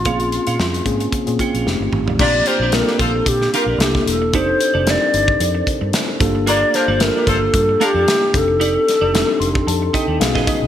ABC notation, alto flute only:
X:1
M:4/4
L:1/16
Q:"Swing 16ths" 1/4=112
K:Bbdor
V:1 name="Alto flute"
F12 z4 | [K:Fmix] d2 c2 B3/2 B/2 A2 G2 B2 G2 A2 | c4 d6 z6 | d2 c2 B2 A4 G4 A2- |
A8- A2 z6 |]